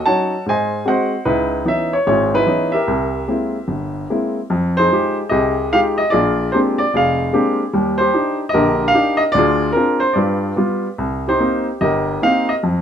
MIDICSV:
0, 0, Header, 1, 2, 480
1, 0, Start_track
1, 0, Tempo, 404313
1, 1508, Time_signature, 4, 2, 24, 8
1, 11586, Tempo, 408719
1, 15175, End_track
2, 0, Start_track
2, 0, Title_t, "Grand piano"
2, 0, Program_c, 0, 0
2, 0, Note_on_c, 0, 66, 61
2, 0, Note_on_c, 0, 69, 61
2, 66, Note_on_c, 0, 81, 83
2, 70, Note_on_c, 0, 54, 41
2, 73, Note_on_c, 0, 61, 38
2, 75, Note_on_c, 0, 78, 60
2, 78, Note_on_c, 0, 73, 52
2, 83, Note_on_c, 0, 63, 46
2, 402, Note_off_c, 0, 54, 0
2, 404, Note_off_c, 0, 61, 0
2, 409, Note_off_c, 0, 63, 0
2, 511, Note_off_c, 0, 69, 0
2, 513, Note_off_c, 0, 66, 0
2, 515, Note_off_c, 0, 81, 0
2, 520, Note_off_c, 0, 78, 0
2, 521, Note_off_c, 0, 73, 0
2, 549, Note_on_c, 0, 44, 51
2, 580, Note_on_c, 0, 72, 53
2, 582, Note_on_c, 0, 80, 76
2, 590, Note_on_c, 0, 75, 55
2, 965, Note_off_c, 0, 44, 0
2, 1013, Note_off_c, 0, 80, 0
2, 1013, Note_on_c, 0, 56, 44
2, 1017, Note_on_c, 0, 66, 44
2, 1020, Note_on_c, 0, 60, 37
2, 1030, Note_off_c, 0, 75, 0
2, 1039, Note_off_c, 0, 72, 0
2, 1042, Note_on_c, 0, 78, 75
2, 1048, Note_on_c, 0, 75, 50
2, 1057, Note_on_c, 0, 72, 59
2, 1352, Note_off_c, 0, 56, 0
2, 1354, Note_off_c, 0, 66, 0
2, 1355, Note_off_c, 0, 60, 0
2, 1485, Note_off_c, 0, 75, 0
2, 1488, Note_on_c, 0, 71, 79
2, 1489, Note_off_c, 0, 72, 0
2, 1490, Note_on_c, 0, 63, 54
2, 1493, Note_on_c, 0, 37, 59
2, 1500, Note_on_c, 0, 64, 57
2, 1529, Note_off_c, 0, 78, 0
2, 1916, Note_off_c, 0, 37, 0
2, 1944, Note_off_c, 0, 71, 0
2, 1952, Note_off_c, 0, 63, 0
2, 1960, Note_on_c, 0, 52, 46
2, 1964, Note_on_c, 0, 59, 41
2, 1967, Note_on_c, 0, 61, 36
2, 1970, Note_on_c, 0, 63, 47
2, 1997, Note_on_c, 0, 76, 73
2, 2295, Note_on_c, 0, 73, 77
2, 2305, Note_off_c, 0, 52, 0
2, 2307, Note_off_c, 0, 59, 0
2, 2309, Note_off_c, 0, 61, 0
2, 2310, Note_off_c, 0, 63, 0
2, 2316, Note_off_c, 0, 76, 0
2, 2415, Note_off_c, 0, 64, 0
2, 2441, Note_off_c, 0, 73, 0
2, 2451, Note_on_c, 0, 64, 46
2, 2454, Note_on_c, 0, 44, 58
2, 2458, Note_on_c, 0, 32, 61
2, 2459, Note_on_c, 0, 73, 70
2, 2461, Note_on_c, 0, 68, 52
2, 2754, Note_off_c, 0, 73, 0
2, 2763, Note_off_c, 0, 64, 0
2, 2781, Note_on_c, 0, 63, 55
2, 2781, Note_on_c, 0, 64, 54
2, 2788, Note_on_c, 0, 71, 90
2, 2873, Note_off_c, 0, 44, 0
2, 2875, Note_off_c, 0, 32, 0
2, 2923, Note_off_c, 0, 63, 0
2, 2924, Note_on_c, 0, 52, 50
2, 2929, Note_on_c, 0, 61, 44
2, 2936, Note_on_c, 0, 59, 43
2, 2941, Note_on_c, 0, 63, 51
2, 3227, Note_off_c, 0, 71, 0
2, 3228, Note_on_c, 0, 76, 72
2, 3251, Note_on_c, 0, 67, 50
2, 3253, Note_on_c, 0, 70, 51
2, 3263, Note_off_c, 0, 52, 0
2, 3266, Note_off_c, 0, 61, 0
2, 3269, Note_off_c, 0, 59, 0
2, 3272, Note_off_c, 0, 63, 0
2, 3369, Note_off_c, 0, 68, 0
2, 3375, Note_off_c, 0, 64, 0
2, 3414, Note_on_c, 0, 36, 57
2, 3831, Note_off_c, 0, 36, 0
2, 3891, Note_on_c, 0, 58, 37
2, 3893, Note_on_c, 0, 56, 41
2, 3898, Note_on_c, 0, 60, 37
2, 3901, Note_on_c, 0, 64, 43
2, 4229, Note_off_c, 0, 58, 0
2, 4230, Note_off_c, 0, 56, 0
2, 4232, Note_off_c, 0, 60, 0
2, 4234, Note_off_c, 0, 64, 0
2, 4367, Note_on_c, 0, 31, 48
2, 4798, Note_off_c, 0, 31, 0
2, 4868, Note_on_c, 0, 58, 37
2, 4870, Note_on_c, 0, 56, 41
2, 4871, Note_on_c, 0, 60, 35
2, 4873, Note_on_c, 0, 64, 45
2, 5132, Note_off_c, 0, 76, 0
2, 5143, Note_off_c, 0, 67, 0
2, 5144, Note_off_c, 0, 70, 0
2, 5208, Note_off_c, 0, 58, 0
2, 5209, Note_off_c, 0, 56, 0
2, 5210, Note_off_c, 0, 60, 0
2, 5211, Note_off_c, 0, 64, 0
2, 5342, Note_on_c, 0, 41, 64
2, 5663, Note_on_c, 0, 72, 91
2, 5687, Note_on_c, 0, 68, 51
2, 5688, Note_on_c, 0, 63, 49
2, 5773, Note_off_c, 0, 41, 0
2, 5822, Note_off_c, 0, 63, 0
2, 5837, Note_on_c, 0, 56, 46
2, 5839, Note_on_c, 0, 63, 39
2, 5847, Note_on_c, 0, 65, 41
2, 5851, Note_on_c, 0, 67, 51
2, 6121, Note_off_c, 0, 72, 0
2, 6176, Note_off_c, 0, 56, 0
2, 6177, Note_off_c, 0, 63, 0
2, 6181, Note_off_c, 0, 65, 0
2, 6183, Note_off_c, 0, 67, 0
2, 6286, Note_on_c, 0, 75, 72
2, 6303, Note_off_c, 0, 68, 0
2, 6307, Note_on_c, 0, 67, 62
2, 6308, Note_on_c, 0, 36, 60
2, 6321, Note_on_c, 0, 68, 51
2, 6735, Note_off_c, 0, 36, 0
2, 6791, Note_off_c, 0, 67, 0
2, 6798, Note_on_c, 0, 56, 49
2, 6799, Note_on_c, 0, 77, 85
2, 6800, Note_on_c, 0, 63, 48
2, 6804, Note_off_c, 0, 75, 0
2, 6809, Note_on_c, 0, 65, 43
2, 6809, Note_on_c, 0, 67, 57
2, 6872, Note_off_c, 0, 77, 0
2, 7096, Note_on_c, 0, 75, 82
2, 7137, Note_off_c, 0, 56, 0
2, 7138, Note_off_c, 0, 63, 0
2, 7143, Note_off_c, 0, 65, 0
2, 7143, Note_off_c, 0, 67, 0
2, 7239, Note_off_c, 0, 68, 0
2, 7245, Note_on_c, 0, 74, 88
2, 7263, Note_off_c, 0, 75, 0
2, 7269, Note_on_c, 0, 68, 65
2, 7276, Note_on_c, 0, 65, 64
2, 7284, Note_on_c, 0, 34, 67
2, 7701, Note_off_c, 0, 34, 0
2, 7711, Note_off_c, 0, 74, 0
2, 7741, Note_on_c, 0, 72, 73
2, 7760, Note_on_c, 0, 62, 40
2, 7761, Note_on_c, 0, 58, 43
2, 7763, Note_on_c, 0, 56, 47
2, 7765, Note_on_c, 0, 60, 42
2, 7766, Note_on_c, 0, 67, 51
2, 7814, Note_off_c, 0, 72, 0
2, 8054, Note_on_c, 0, 74, 83
2, 8093, Note_off_c, 0, 62, 0
2, 8094, Note_off_c, 0, 58, 0
2, 8095, Note_off_c, 0, 56, 0
2, 8096, Note_off_c, 0, 60, 0
2, 8097, Note_off_c, 0, 67, 0
2, 8185, Note_off_c, 0, 68, 0
2, 8188, Note_off_c, 0, 65, 0
2, 8235, Note_off_c, 0, 74, 0
2, 8240, Note_on_c, 0, 29, 59
2, 8254, Note_on_c, 0, 74, 54
2, 8257, Note_on_c, 0, 68, 55
2, 8271, Note_on_c, 0, 77, 75
2, 8651, Note_off_c, 0, 29, 0
2, 8702, Note_on_c, 0, 56, 51
2, 8707, Note_on_c, 0, 58, 44
2, 8709, Note_on_c, 0, 62, 44
2, 8711, Note_on_c, 0, 60, 45
2, 8712, Note_on_c, 0, 67, 60
2, 8994, Note_off_c, 0, 77, 0
2, 9037, Note_off_c, 0, 56, 0
2, 9040, Note_off_c, 0, 58, 0
2, 9041, Note_off_c, 0, 62, 0
2, 9042, Note_off_c, 0, 60, 0
2, 9042, Note_off_c, 0, 67, 0
2, 9148, Note_off_c, 0, 74, 0
2, 9150, Note_off_c, 0, 68, 0
2, 9181, Note_on_c, 0, 55, 59
2, 9185, Note_on_c, 0, 39, 63
2, 9471, Note_on_c, 0, 72, 82
2, 9504, Note_on_c, 0, 67, 58
2, 9597, Note_off_c, 0, 55, 0
2, 9599, Note_off_c, 0, 39, 0
2, 9651, Note_off_c, 0, 67, 0
2, 9655, Note_on_c, 0, 62, 43
2, 9667, Note_on_c, 0, 63, 46
2, 9669, Note_on_c, 0, 67, 53
2, 9929, Note_off_c, 0, 72, 0
2, 9991, Note_off_c, 0, 62, 0
2, 9997, Note_off_c, 0, 63, 0
2, 9998, Note_off_c, 0, 67, 0
2, 10083, Note_on_c, 0, 75, 79
2, 10134, Note_on_c, 0, 67, 60
2, 10139, Note_on_c, 0, 70, 64
2, 10145, Note_on_c, 0, 34, 64
2, 10146, Note_on_c, 0, 50, 59
2, 10541, Note_on_c, 0, 77, 89
2, 10556, Note_off_c, 0, 75, 0
2, 10559, Note_off_c, 0, 34, 0
2, 10560, Note_off_c, 0, 50, 0
2, 10604, Note_off_c, 0, 67, 0
2, 10619, Note_on_c, 0, 62, 50
2, 10622, Note_on_c, 0, 67, 53
2, 10627, Note_on_c, 0, 63, 46
2, 10888, Note_on_c, 0, 75, 86
2, 10908, Note_off_c, 0, 77, 0
2, 10947, Note_off_c, 0, 75, 0
2, 10952, Note_off_c, 0, 62, 0
2, 10954, Note_off_c, 0, 67, 0
2, 10956, Note_off_c, 0, 63, 0
2, 11052, Note_off_c, 0, 70, 0
2, 11064, Note_on_c, 0, 74, 100
2, 11095, Note_on_c, 0, 38, 70
2, 11133, Note_on_c, 0, 65, 64
2, 11139, Note_on_c, 0, 68, 66
2, 11515, Note_off_c, 0, 38, 0
2, 11528, Note_off_c, 0, 74, 0
2, 11545, Note_on_c, 0, 70, 73
2, 11575, Note_off_c, 0, 65, 0
2, 11584, Note_on_c, 0, 60, 46
2, 11593, Note_on_c, 0, 65, 50
2, 11601, Note_on_c, 0, 62, 42
2, 11854, Note_off_c, 0, 70, 0
2, 11868, Note_on_c, 0, 72, 78
2, 11913, Note_off_c, 0, 60, 0
2, 11918, Note_off_c, 0, 65, 0
2, 11922, Note_off_c, 0, 62, 0
2, 12023, Note_on_c, 0, 74, 63
2, 12031, Note_off_c, 0, 68, 0
2, 12051, Note_off_c, 0, 72, 0
2, 12051, Note_on_c, 0, 43, 63
2, 12077, Note_on_c, 0, 65, 44
2, 12078, Note_on_c, 0, 71, 48
2, 12472, Note_off_c, 0, 43, 0
2, 12522, Note_off_c, 0, 65, 0
2, 12530, Note_on_c, 0, 59, 46
2, 12540, Note_on_c, 0, 55, 49
2, 12540, Note_on_c, 0, 65, 56
2, 12795, Note_off_c, 0, 74, 0
2, 12872, Note_off_c, 0, 59, 0
2, 12877, Note_off_c, 0, 55, 0
2, 12877, Note_off_c, 0, 65, 0
2, 12989, Note_off_c, 0, 71, 0
2, 13024, Note_on_c, 0, 36, 60
2, 13369, Note_on_c, 0, 67, 49
2, 13380, Note_on_c, 0, 72, 75
2, 13393, Note_on_c, 0, 63, 51
2, 13444, Note_off_c, 0, 36, 0
2, 13506, Note_off_c, 0, 63, 0
2, 13510, Note_on_c, 0, 60, 41
2, 13512, Note_on_c, 0, 58, 48
2, 13523, Note_on_c, 0, 63, 56
2, 13812, Note_off_c, 0, 72, 0
2, 13843, Note_off_c, 0, 60, 0
2, 13844, Note_off_c, 0, 58, 0
2, 13850, Note_off_c, 0, 63, 0
2, 13993, Note_on_c, 0, 75, 73
2, 13995, Note_on_c, 0, 31, 64
2, 13996, Note_off_c, 0, 67, 0
2, 14014, Note_on_c, 0, 67, 53
2, 14018, Note_on_c, 0, 70, 53
2, 14410, Note_off_c, 0, 31, 0
2, 14440, Note_off_c, 0, 75, 0
2, 14477, Note_on_c, 0, 58, 50
2, 14484, Note_on_c, 0, 63, 58
2, 14486, Note_on_c, 0, 60, 46
2, 14491, Note_on_c, 0, 77, 85
2, 14792, Note_on_c, 0, 75, 77
2, 14804, Note_off_c, 0, 77, 0
2, 14805, Note_off_c, 0, 58, 0
2, 14808, Note_off_c, 0, 63, 0
2, 14809, Note_off_c, 0, 60, 0
2, 14851, Note_off_c, 0, 75, 0
2, 14912, Note_off_c, 0, 67, 0
2, 14914, Note_off_c, 0, 70, 0
2, 14960, Note_on_c, 0, 41, 61
2, 15175, Note_off_c, 0, 41, 0
2, 15175, End_track
0, 0, End_of_file